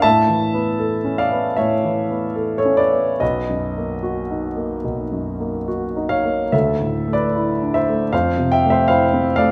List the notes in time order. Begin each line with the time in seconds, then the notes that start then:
0.02 A2 E5 A5
0.28 E3
0.54 B3
0.79 A4
1.04 C#4
1.18 D5 F5
1.32 B3
1.56 A2 C#5 E5
1.84 E3
2.11 B3
2.36 A4
2.58 A4 C#5
2.65 C#4
2.77 B4 D5
2.93 B3
3.20 B1 B4 D#5
3.49 F#2
3.77 A#3
4.03 F#4
4.31 D#4
4.57 A#3
4.85 B1
5.12 F#2
5.40 A#3
5.68 F#4
5.97 D#4
6.09 C#5 F5
6.25 A#3
6.52 D2 A4 E5
6.81 A2
7.08 A3
7.13 B4 D5
7.35 E4
7.62 D4
7.74 C5 E5
7.89 A3
8.13 F2 C5 F5
8.38 C3
8.52 E5 G5
8.65 A3
8.70 C5 E5
8.88 E4 C5 F5
9.13 C4
9.36 A3 D5 F5